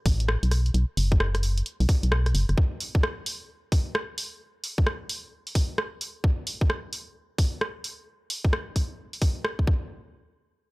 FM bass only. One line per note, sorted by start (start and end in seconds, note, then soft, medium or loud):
0.06 0.37 A1 loud
0.43 0.71 B1 medium
0.74 0.85 B1 medium
0.97 1.62 F#1 medium
1.80 1.87 B1 loud
2.03 2.34 B1 medium
2.35 2.45 F#1 medium
2.49 2.55 F#1 medium